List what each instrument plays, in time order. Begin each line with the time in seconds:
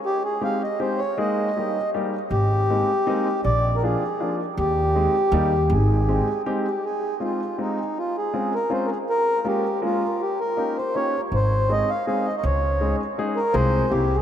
0.06 accordion G4
0.24 accordion G#4
0.41 upright piano G#3 C4 D#4 G4, accordion F5
0.63 accordion D#5
0.80 upright piano G#3 C4 D#4 G4, accordion C5
0.98 accordion C#5
1.18 upright piano G#3 A#3 D#4 G#4, accordion D#5
1.57 upright piano G3 A#3 D#4 G4
1.94 upright piano G3 A#3 D#4 G4
2.31 upright bass G#1, accordion G4
2.70 upright piano G#3 A#3 C4 D#4
3.07 upright piano G#3 A#3 C4 D#4
3.44 upright bass A#1, accordion D5
3.75 accordion A#4
3.83 upright piano F3 A#3 D4 F4, accordion G#4
4.20 upright piano F3 A#3 D4 F4
4.57 upright bass D#2, accordion G4
4.95 upright piano G#3 C4 D#4 G#4
5.32 upright bass D#2, upright piano G3 A#3 D#4 G4
5.70 upright bass G#1, accordion G#4
6.09 upright piano G#3 C4 D#4 G4
6.46 upright piano G#3 C4 D#4 G4
6.67 accordion G4
6.85 accordion G#4
7.20 upright piano G#3 C4 D#4 F4, accordion F4
7.58 upright piano G#3 C4 D#4 F4, accordion D#4
7.98 accordion F4
8.17 accordion G#4
8.34 upright piano G#3 C4 C#4 F4
8.55 accordion A#4
8.70 upright piano G#3 C4 C#4 F4, accordion C5
8.86 accordion A#4
8.90 accordion G#4
9.10 accordion A#4
9.44 upright piano G#3 A#3 C#4 F4, accordion G4
9.82 upright piano G#3 A#3 C#4 F4, accordion F4
10.22 accordion G4
10.40 accordion A#4
10.57 upright piano A#3 C#4 D#4 G4
10.77 accordion C5
10.95 upright piano A#3 C#4 D#4 G4, accordion C#5
11.32 upright bass G#1, accordion C5
11.69 upright piano G#3 C4 D#4 G#4, accordion D#5
11.90 accordion F5
12.07 upright piano G#3 C4 D#4 G#4, accordion F5
12.26 accordion D#5
12.37 accordion D#5
12.43 upright bass C#2, accordion C#5
12.81 upright piano G#3 C#4 D#4 G#4
13.18 upright piano G#3 C#4 D#4 G#4
13.36 accordion A#4
13.53 upright bass C2, upright piano G#3 C4 F4 G#4, accordion C5
13.89 upright bass C2, upright piano A#3 C4 E4 G4, accordion G4
14.15 accordion G#4